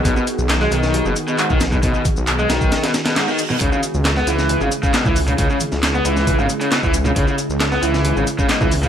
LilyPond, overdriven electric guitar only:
\new Staff \with { instrumentName = "Overdriven electric guitar" } { \clef bass \time 4/4 \key cis \minor \tempo 4 = 135 b,16 b,16 r8. gis16 dis8. b,16 r16 b,16 gis,16 dis16 r16 b,16 | b,16 b,16 r8. gis16 dis8. b,16 r16 b,16 gis,16 dis16 r16 b,16 | cis16 cis16 r8. b16 e8. cis16 r16 cis16 b,16 e16 r16 cis16 | cis16 cis16 r8. b16 e8. cis16 r16 cis16 b,16 e16 r16 cis16 |
cis16 cis16 r8. b16 e8. cis16 r16 cis16 b,16 e16 r16 cis16 | }